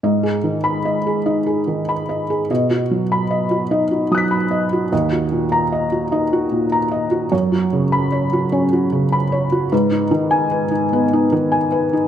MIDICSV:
0, 0, Header, 1, 2, 480
1, 0, Start_track
1, 0, Key_signature, 5, "minor"
1, 0, Tempo, 817439
1, 22, Time_signature, 6, 3, 24, 8
1, 1942, Tempo, 802139
1, 7190, End_track
2, 0, Start_track
2, 0, Title_t, "Felt piano"
2, 0, Program_c, 0, 0
2, 20, Note_on_c, 0, 44, 47
2, 21, Note_on_c, 0, 75, 41
2, 137, Note_on_c, 0, 68, 38
2, 143, Control_c, 0, 64, 127
2, 214, Note_off_c, 0, 75, 0
2, 257, Note_on_c, 0, 51, 37
2, 332, Note_off_c, 0, 68, 0
2, 375, Note_on_c, 0, 83, 52
2, 452, Note_off_c, 0, 51, 0
2, 501, Note_on_c, 0, 75, 39
2, 571, Note_off_c, 0, 83, 0
2, 626, Note_on_c, 0, 68, 36
2, 695, Note_off_c, 0, 75, 0
2, 739, Note_on_c, 0, 75, 40
2, 740, Note_on_c, 0, 63, 35
2, 817, Note_off_c, 0, 68, 0
2, 860, Note_on_c, 0, 68, 37
2, 934, Note_off_c, 0, 75, 0
2, 983, Note_on_c, 0, 51, 37
2, 1054, Note_off_c, 0, 68, 0
2, 1108, Note_on_c, 0, 83, 42
2, 1126, Note_off_c, 0, 63, 0
2, 1176, Note_off_c, 0, 51, 0
2, 1228, Note_on_c, 0, 75, 37
2, 1299, Note_off_c, 0, 83, 0
2, 1351, Note_on_c, 0, 68, 35
2, 1418, Note_off_c, 0, 75, 0
2, 1440, Note_off_c, 0, 44, 0
2, 1468, Note_off_c, 0, 68, 0
2, 1472, Note_on_c, 0, 47, 46
2, 1472, Note_on_c, 0, 75, 41
2, 1476, Control_c, 0, 64, 0
2, 1572, Control_c, 0, 64, 127
2, 1590, Note_on_c, 0, 66, 35
2, 1660, Note_off_c, 0, 75, 0
2, 1710, Note_on_c, 0, 54, 38
2, 1779, Note_off_c, 0, 66, 0
2, 1830, Note_on_c, 0, 83, 52
2, 1898, Note_off_c, 0, 54, 0
2, 1942, Note_on_c, 0, 75, 40
2, 2019, Note_off_c, 0, 83, 0
2, 2063, Note_on_c, 0, 66, 36
2, 2135, Note_off_c, 0, 75, 0
2, 2183, Note_on_c, 0, 63, 37
2, 2184, Note_on_c, 0, 75, 39
2, 2255, Note_off_c, 0, 66, 0
2, 2303, Note_on_c, 0, 66, 37
2, 2375, Note_off_c, 0, 75, 0
2, 2425, Note_on_c, 0, 54, 36
2, 2427, Note_on_c, 0, 87, 31
2, 2444, Note_on_c, 0, 90, 31
2, 2461, Note_on_c, 0, 95, 30
2, 2494, Note_off_c, 0, 66, 0
2, 2542, Note_on_c, 0, 83, 41
2, 2566, Note_off_c, 0, 63, 0
2, 2616, Note_off_c, 0, 54, 0
2, 2662, Note_on_c, 0, 75, 40
2, 2736, Note_off_c, 0, 83, 0
2, 2791, Note_on_c, 0, 66, 38
2, 2857, Note_off_c, 0, 75, 0
2, 2884, Note_off_c, 0, 87, 0
2, 2886, Note_off_c, 0, 47, 0
2, 2893, Note_off_c, 0, 90, 0
2, 2902, Note_off_c, 0, 95, 0
2, 2909, Note_off_c, 0, 66, 0
2, 2909, Note_on_c, 0, 39, 47
2, 2910, Note_on_c, 0, 75, 43
2, 2917, Control_c, 0, 64, 0
2, 2998, Control_c, 0, 64, 127
2, 3028, Note_on_c, 0, 66, 36
2, 3101, Note_off_c, 0, 75, 0
2, 3147, Note_on_c, 0, 46, 41
2, 3219, Note_off_c, 0, 66, 0
2, 3266, Note_on_c, 0, 82, 52
2, 3338, Note_off_c, 0, 46, 0
2, 3388, Note_on_c, 0, 75, 41
2, 3457, Note_off_c, 0, 82, 0
2, 3506, Note_on_c, 0, 66, 40
2, 3578, Note_off_c, 0, 75, 0
2, 3625, Note_on_c, 0, 75, 43
2, 3626, Note_on_c, 0, 63, 40
2, 3698, Note_off_c, 0, 66, 0
2, 3750, Note_on_c, 0, 66, 43
2, 3817, Note_off_c, 0, 75, 0
2, 3863, Note_on_c, 0, 46, 39
2, 3940, Note_off_c, 0, 66, 0
2, 3986, Note_on_c, 0, 82, 45
2, 4009, Note_off_c, 0, 63, 0
2, 4056, Note_off_c, 0, 46, 0
2, 4101, Note_on_c, 0, 75, 40
2, 4177, Note_off_c, 0, 82, 0
2, 4219, Note_on_c, 0, 66, 42
2, 4295, Note_off_c, 0, 75, 0
2, 4322, Note_off_c, 0, 39, 0
2, 4342, Note_off_c, 0, 66, 0
2, 4342, Note_on_c, 0, 42, 54
2, 4344, Note_on_c, 0, 73, 47
2, 4357, Control_c, 0, 64, 0
2, 4460, Control_c, 0, 64, 127
2, 4462, Note_on_c, 0, 66, 41
2, 4537, Note_off_c, 0, 73, 0
2, 4588, Note_on_c, 0, 49, 44
2, 4657, Note_off_c, 0, 66, 0
2, 4704, Note_on_c, 0, 83, 60
2, 4779, Note_off_c, 0, 49, 0
2, 4823, Note_on_c, 0, 73, 45
2, 4897, Note_off_c, 0, 83, 0
2, 4948, Note_on_c, 0, 66, 41
2, 5016, Note_off_c, 0, 73, 0
2, 5062, Note_on_c, 0, 73, 46
2, 5063, Note_on_c, 0, 61, 44
2, 5137, Note_off_c, 0, 66, 0
2, 5186, Note_on_c, 0, 66, 47
2, 5253, Note_off_c, 0, 73, 0
2, 5303, Note_on_c, 0, 49, 43
2, 5374, Note_off_c, 0, 66, 0
2, 5423, Note_on_c, 0, 83, 46
2, 5443, Note_off_c, 0, 61, 0
2, 5492, Note_off_c, 0, 49, 0
2, 5541, Note_on_c, 0, 73, 46
2, 5613, Note_off_c, 0, 83, 0
2, 5661, Note_on_c, 0, 66, 47
2, 5732, Note_off_c, 0, 73, 0
2, 5754, Note_off_c, 0, 42, 0
2, 5780, Note_off_c, 0, 66, 0
2, 5780, Note_on_c, 0, 71, 48
2, 5781, Note_on_c, 0, 44, 59
2, 5788, Control_c, 0, 64, 0
2, 5874, Control_c, 0, 64, 127
2, 5897, Note_on_c, 0, 63, 45
2, 5972, Note_off_c, 0, 71, 0
2, 6005, Note_off_c, 0, 63, 0
2, 6014, Note_on_c, 0, 51, 49
2, 6014, Note_on_c, 0, 63, 46
2, 6131, Note_on_c, 0, 80, 66
2, 6210, Note_off_c, 0, 51, 0
2, 6254, Note_on_c, 0, 71, 47
2, 6328, Note_off_c, 0, 80, 0
2, 6365, Note_off_c, 0, 63, 0
2, 6374, Note_on_c, 0, 63, 44
2, 6450, Note_off_c, 0, 71, 0
2, 6501, Note_on_c, 0, 59, 44
2, 6504, Note_on_c, 0, 71, 47
2, 6570, Note_off_c, 0, 63, 0
2, 6624, Note_on_c, 0, 63, 50
2, 6695, Note_off_c, 0, 71, 0
2, 6730, Note_off_c, 0, 63, 0
2, 6739, Note_on_c, 0, 51, 46
2, 6739, Note_on_c, 0, 63, 46
2, 6855, Note_on_c, 0, 80, 52
2, 6886, Note_off_c, 0, 59, 0
2, 6933, Note_off_c, 0, 51, 0
2, 6975, Note_on_c, 0, 71, 47
2, 7050, Note_off_c, 0, 80, 0
2, 7094, Note_off_c, 0, 63, 0
2, 7103, Note_on_c, 0, 63, 44
2, 7171, Note_off_c, 0, 71, 0
2, 7190, Note_off_c, 0, 44, 0
2, 7190, Note_off_c, 0, 63, 0
2, 7190, End_track
0, 0, End_of_file